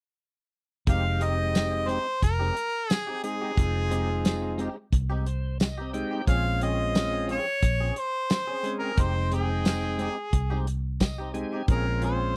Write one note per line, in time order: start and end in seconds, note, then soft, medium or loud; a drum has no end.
0.87 1.96 F1 medium
0.87 1.05 G#3 medium
0.87 1.99 G#3 medium
0.87 1.99 C4 medium
0.87 1.05 C4 medium
0.87 1.99 D#4 medium
0.87 1.05 D#4 medium
0.87 1.99 G4 medium
0.87 1.04 G4 medium
0.87 1.24 F5 medium
0.87 kick loud
0.87 closed hi-hat medium
1.05 muted clean electric guitar stroke soft
1.20 1.38 G#3 medium
1.20 1.38 C4 medium
1.20 1.38 D#4 medium
1.20 1.37 G4 medium
1.20 1.90 D#5 medium
1.20 closed hi-hat medium
1.38 muted clean electric guitar stroke soft
1.55 snare loud
1.55 closed hi-hat medium
1.55 tambourine loud
1.72 muted clean electric guitar stroke soft
1.87 2.06 G#3 medium
1.87 2.06 C4 medium
1.87 2.06 D#4 medium
1.87 2.05 G4 medium
1.87 2.22 C5 loud
1.87 closed hi-hat soft
2.06 muted clean electric guitar stroke soft
2.22 2.50 F1 medium
2.22 2.91 A#4 medium
2.22 muted clean electric guitar stroke soft
2.22 kick medium
2.22 closed hi-hat medium
2.39 2.54 G#3 medium
2.39 2.55 C4 medium
2.39 2.55 D#4 medium
2.39 2.56 G4 medium
2.56 muted clean electric guitar stroke soft
2.56 closed hi-hat medium
2.90 3.20 G#4 medium
2.90 muted clean electric guitar stroke soft
2.90 snare loud
2.90 closed hi-hat medium
2.90 tambourine loud
3.07 3.23 C4 soft
3.07 3.23 D#4 soft
3.07 3.23 G4 soft
3.24 3.52 G#3 medium
3.24 3.52 C4 medium
3.24 3.52 D#4 medium
3.24 4.55 G#4 medium
3.24 3.52 G#4 medium
3.24 muted clean electric guitar stroke soft
3.24 closed hi-hat medium
3.41 3.62 C4 soft
3.41 3.62 D#4 soft
3.41 3.61 G4 medium
3.57 4.67 F1 medium
3.57 4.69 G#3 medium
3.57 4.69 C4 medium
3.57 4.69 D#4 medium
3.57 4.69 F4 medium
3.57 kick loud
3.57 closed hi-hat medium
3.75 muted clean electric guitar stroke soft
3.91 4.09 G#3 medium
3.91 4.09 C4 medium
3.91 4.09 D#4 medium
3.91 4.08 G4 medium
3.91 closed hi-hat medium
4.09 muted clean electric guitar stroke soft
4.25 snare loud
4.25 closed hi-hat medium
4.25 tambourine loud
4.42 muted clean electric guitar stroke soft
4.58 4.76 G#3 medium
4.58 4.77 C4 medium
4.58 4.76 D#4 medium
4.58 4.75 G4 medium
4.58 closed hi-hat soft
4.76 muted clean electric guitar stroke soft
4.92 6.02 C2 medium
4.92 muted clean electric guitar stroke soft
4.92 kick medium
4.92 closed hi-hat medium
5.10 5.25 G#3 medium
5.10 5.26 C4 medium
5.10 5.26 D#4 medium
5.10 5.26 G4 medium
5.26 5.58 C5 medium
5.26 muted clean electric guitar stroke soft
5.26 closed hi-hat medium
5.60 5.92 D#5 medium
5.60 muted clean electric guitar stroke soft
5.60 snare loud
5.60 closed hi-hat medium
5.60 tambourine loud
5.78 5.93 C4 medium
5.78 5.94 D#4 medium
5.78 5.94 G4 medium
5.93 6.22 G#3 medium
5.93 6.22 C4 medium
5.93 6.22 D#4 medium
5.93 6.22 G4 medium
5.93 6.25 G5 medium
5.93 muted clean electric guitar stroke soft
5.93 closed hi-hat medium
6.11 6.26 C4 soft
6.11 6.28 D#4 soft
6.11 6.27 G4 soft
6.27 7.37 A#1 medium
6.27 6.45 F3 medium
6.27 7.39 G#3 medium
6.27 7.39 C4 medium
6.27 6.45 C4 medium
6.27 7.39 C#4 medium
6.27 6.45 C#4 medium
6.27 7.39 F4 medium
6.27 6.44 G#4 medium
6.27 6.60 F5 loud
6.27 kick loud
6.27 closed hi-hat medium
6.45 muted clean electric guitar stroke soft
6.61 6.79 F3 medium
6.61 6.79 C4 medium
6.61 6.79 C#4 medium
6.61 6.78 G#4 medium
6.61 7.26 D#5 medium
6.61 closed hi-hat medium
6.79 muted clean electric guitar stroke soft
6.95 snare loud
6.95 closed hi-hat medium
6.95 tambourine medium
7.13 muted clean electric guitar stroke soft
7.28 7.46 F3 medium
7.28 7.47 C4 medium
7.28 7.46 C#4 medium
7.28 7.45 G#4 medium
7.28 7.94 C#5 loud
7.28 closed hi-hat soft
7.46 muted clean electric guitar stroke soft
7.62 7.90 A#1 medium
7.62 muted clean electric guitar stroke soft
7.62 kick medium
7.62 closed hi-hat medium
7.81 7.95 F3 medium
7.81 7.96 C4 medium
7.81 7.96 C#4 medium
7.81 7.97 G#4 medium
7.96 8.73 C5 medium
7.96 muted clean electric guitar stroke soft
7.96 closed hi-hat medium
8.30 muted clean electric guitar stroke soft
8.30 snare loud
8.30 closed hi-hat medium
8.30 tambourine loud
8.47 8.64 C4 soft
8.47 8.64 C#4 soft
8.47 8.64 G#4 medium
8.63 8.92 G#3 medium
8.63 8.92 C4 medium
8.63 8.92 C#4 medium
8.63 8.92 G#4 medium
8.63 muted clean electric guitar stroke soft
8.63 closed hi-hat medium
8.79 8.98 C#4 soft
8.79 8.97 G#4 soft
8.79 9.03 A#4 medium
8.84 8.97 C4 soft
8.97 10.07 F1 medium
8.97 10.10 G#3 medium
8.97 9.16 G#3 medium
8.97 10.10 C4 medium
8.97 9.16 C4 medium
8.97 10.10 D#4 medium
8.97 9.16 D#4 medium
8.97 9.15 G4 medium
8.97 10.10 G5 medium
8.97 kick loud
8.97 closed hi-hat medium
9.01 9.34 C5 medium
9.16 muted clean electric guitar stroke soft
9.31 9.49 G#3 medium
9.31 9.50 C4 medium
9.31 9.49 D#4 medium
9.31 9.48 G4 medium
9.31 10.64 G#4 medium
9.31 closed hi-hat medium
9.50 muted clean electric guitar stroke soft
9.65 snare loud
9.65 closed hi-hat medium
9.65 tambourine loud
9.83 muted clean electric guitar stroke soft
9.98 10.17 G#3 medium
9.98 10.17 C4 medium
9.98 10.16 D#4 medium
9.98 10.16 G4 medium
9.98 closed hi-hat medium
10.17 muted clean electric guitar stroke soft
10.33 11.43 C2 medium
10.33 muted clean electric guitar stroke soft
10.33 kick medium
10.33 closed hi-hat medium
10.50 10.66 G#3 medium
10.50 10.66 C4 medium
10.50 10.66 D#4 medium
10.50 10.67 G4 medium
10.67 muted clean electric guitar stroke soft
10.67 closed hi-hat medium
11.00 11.32 D#5 medium
11.00 muted clean electric guitar stroke soft
11.00 kick medium
11.00 snare loud
11.00 closed hi-hat medium
11.00 tambourine loud
11.18 11.34 C4 soft
11.18 11.35 D#4 soft
11.18 11.35 G4 medium
11.34 11.62 G#3 medium
11.34 11.63 C4 medium
11.34 11.63 D#4 medium
11.34 11.63 G4 medium
11.34 11.66 G#5 medium
11.34 muted clean electric guitar stroke soft
11.34 closed hi-hat medium
11.53 11.69 C4 soft
11.53 11.69 D#4 soft
11.53 11.69 G4 soft
11.68 12.37 A#1 medium
11.68 11.87 F3 medium
11.68 12.37 G#3 medium
11.68 12.37 C4 medium
11.68 11.87 C4 medium
11.68 12.37 C#4 medium
11.68 11.86 C#4 medium
11.68 12.37 F4 medium
11.68 11.86 G#4 medium
11.68 12.01 A#4 medium
11.68 kick loud
11.68 closed hi-hat medium
11.87 muted clean electric guitar stroke soft
12.02 12.20 F3 medium
12.02 12.20 C4 medium
12.02 12.20 C#4 medium
12.02 12.19 G#4 medium
12.02 12.37 C5 medium
12.02 closed hi-hat medium
12.20 muted clean electric guitar stroke soft